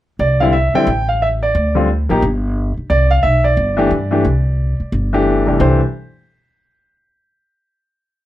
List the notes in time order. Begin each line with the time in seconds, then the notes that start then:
0.19 C2 D5
0.40 D3 G3 C4 E4 F5
0.53 E5
0.74 D3 G3 C4 E4 G5, muted upright bass stroke
0.87 A1
1.09 F5
1.22 E5
1.43 D5
1.55 D2
1.75 D3 G3 C4 F4
2.09 A1 F3 A#3 D#4 G4
2.22 G1
2.77 muted upright bass stroke
2.90 C2 D5
3.11 F5
3.23 B1 E5
3.44 D5
3.57 G1
3.77 E3 A3 D4 G4
3.91 G2
4.11 E3 A3 D4 G4
4.25 C2
4.80 muted upright bass stroke
4.92 G1
5.13 E3 A3 D4 G4
5.47 C2 E3 A3 D4 G4
5.59 C2 E3 A3 D4 G4 C5